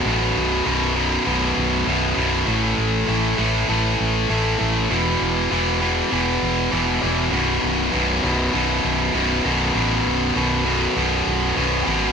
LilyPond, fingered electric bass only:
\new Staff \with { instrumentName = "Fingered electric bass" } { \clef bass \time 4/4 \key e \mixolydian \tempo 4 = 99 a,,8 b,,,8 b,,,4 b,,,8 b,,,8 b,,,8 b,,,8 | a,,8 a,,8 a,,8 a,,8 a,,8 a,,8 a,,8 a,,8 | e,,8 e,,8 e,,4 e,,8 e,,8 e,,8 e,,8 | b,,,8 b,,,8 b,,,8 b,,,8 b,,,8 b,,,8 b,,,8 b,,,8 |
a,,8 b,,,8 b,,,4 b,,,8 b,,,8 b,,,8 gis,,8 | }